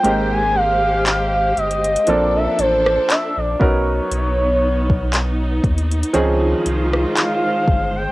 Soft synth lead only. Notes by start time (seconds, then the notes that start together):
Already playing: G5
0.32 G#5
0.56 F5
1.34 F5
1.58 D#5
2.08 D5
2.36 E5
2.59 C5
3.11 E5
3.38 D5
3.62 C#5
7.17 F5
7.96 G5